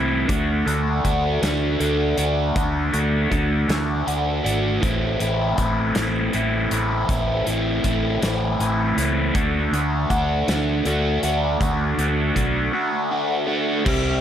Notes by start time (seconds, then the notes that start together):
Already playing: C2 A2 E3 A3 C4 E4
0.28 D2 D3 A3 D4 F#4, kick, closed hi-hat
0.66 D2 D3 A3 D4 F#4, closed hi-hat
1.04 D2 D3 A3 D4 F#4, kick, closed hi-hat
1.42 D2 D3 A3 D4 F#4, snare, closed hi-hat
1.80 D2 D3 A3 D4 F#4, closed hi-hat
2.17 D2 D3 A3 D4 F#4, closed hi-hat
2.55 D2 D3 A3 D4 F#4, kick, closed hi-hat
2.93 D2 D3 A3 D4 F#4, closed hi-hat
3.31 D2 D3 A3 D4 F#4, kick, closed hi-hat
3.69 D2 D3 A3 D4 F#4, snare, closed hi-hat
4.07 D2 D3 A3 D4 F#4, closed hi-hat
4.44 G#1 D3 A3 D4 F#4, closed hi-hat
4.81 A1 A2 E3 A3 C4 E4, kick, closed hi-hat
5.19 A1 A2 E3 A3 C4 E4, closed hi-hat
5.56 A1 A2 E3 A3 C4 E4, kick, closed hi-hat
5.95 A1 A2 E3 A3 C4 E4, snare, closed hi-hat
6.33 A1 A2 E3 A3 C4 E4, closed hi-hat
6.71 A1 A2 E3 A3 C4 E4, closed hi-hat
7.09 A1 A2 E3 A3 C4 E4, kick, closed hi-hat
7.47 A1 A2 E3 A3 C4 E4, closed hi-hat
7.84 A1 A2 E3 A3 C4 E4, kick, closed hi-hat
8.22 A1 A2 E3 A3 C4 E4, snare, closed hi-hat
8.59 A1 A2 E3 A3 C4 E4, closed hi-hat
8.97 C#2 A2 E3 A3 C4 E4, closed hi-hat
9.34 D2 D3 A3 D4 F#4, kick, closed hi-hat
9.71 D2 D3 A3 D4 F#4, closed hi-hat
10.10 D2 D3 A3 D4 F#4, kick, closed hi-hat
10.48 D2 D3 A3 D4 F#4, snare, closed hi-hat
10.85 D2 D3 A3 D4 F#4, closed hi-hat
11.23 D2 D3 A3 D4 F#4, closed hi-hat
11.61 D2 D3 A3 D4 F#4, kick, closed hi-hat
11.97 D2 D3 A3 D4 F#4, closed hi-hat
12.36 B1 D3 A3 D4 F#4, kick, closed hi-hat
12.73 D3 A3 D4 F#4
13.11 D3 A3 D4 F#4
13.47 D3 A3 D4 F#4
13.85 C2 C3 G3 C4 E4 G4, kick, crash